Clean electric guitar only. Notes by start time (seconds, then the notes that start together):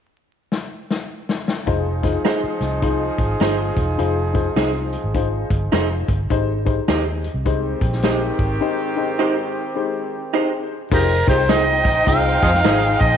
2.25 D#4 G#4 C5
3.41 D#4 G#4 C5
4.56 D#4 G#4 C5
5.72 D#4 G#4 C5
6.88 D#4 G4 C5
8.04 D#4 G4 C5
9.19 D#4 G4 C5
10.34 D#4 G4 C5
11.49 D#4 G#4 C5
12.64 D#4 G#4 C5